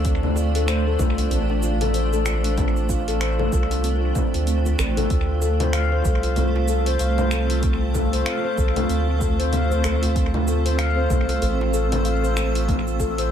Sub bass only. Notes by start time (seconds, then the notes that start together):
Already playing: D2
1.00 C2
1.32 A1
3.52 C2
4.34 D2
4.79 A1
5.11 D2
6.05 C2
7.00 C2
8.58 C2
8.90 D2
11.11 C2
11.42 A1